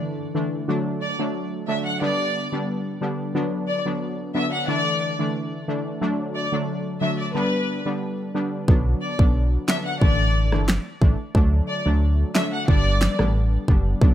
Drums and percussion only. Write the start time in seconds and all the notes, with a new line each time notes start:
8.68 kick
9.19 kick
9.68 finger snap, snare
10.02 kick
10.52 cross-stick
10.68 finger snap, snare
11.02 kick
11.35 kick
12.35 finger snap, snare
12.68 kick
13.01 finger snap, snare
13.19 cross-stick
13.68 kick
14.02 kick